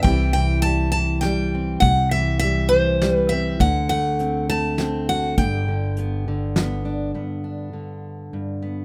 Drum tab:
HH |x-x-x-|x-x-x-|x-x-x-|x-x-x-|
SD |----o-|----o-|----o-|----o-|
BD |o-----|o-----|o-----|o-----|

HH |------|
SD |------|
BD |------|